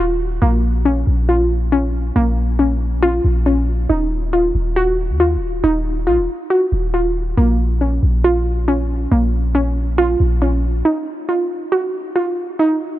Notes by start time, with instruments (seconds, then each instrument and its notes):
Already playing: 808-style bass D#1, synth pluck D#4 F#4
0.00 synth pluck F4
0.42 808-style bass A#1, synth pluck A#3
0.85 synth pluck C#4
1.07 808-style bass A#1
1.29 synth pluck F4
1.72 synth pluck C#4
2.16 808-style bass A#1, synth pluck A#3
2.59 synth pluck C#4
3.03 synth pluck F4
3.24 808-style bass A#1
3.46 synth pluck C#4
3.90 808-style bass D#1, synth pluck D#4
4.33 synth pluck F4
4.55 808-style bass D#1
4.76 synth pluck F#4
5.09 808-style bass D#2
5.20 synth pluck F4
5.36 808-style bass D#1
5.64 808-style bass D#1, synth pluck D#4
6.07 808-style bass A#1, synth pluck F4
6.18 808-style bass D#1
6.50 synth pluck F#4
6.72 808-style bass D#1
6.94 synth pluck F4
7.37 808-style bass A#1, synth pluck A#3
7.81 synth pluck C#4
8.03 808-style bass A#1
8.24 synth pluck F4
8.68 synth pluck C#4
9.11 808-style bass A#1, synth pluck A#3
9.55 synth pluck C#4
9.98 synth pluck F4
10.20 808-style bass A#1
10.42 synth pluck C#4
10.85 synth pluck D#4
11.29 synth pluck F4
11.72 synth pluck F#4
12.16 synth pluck F4
12.59 synth pluck D#4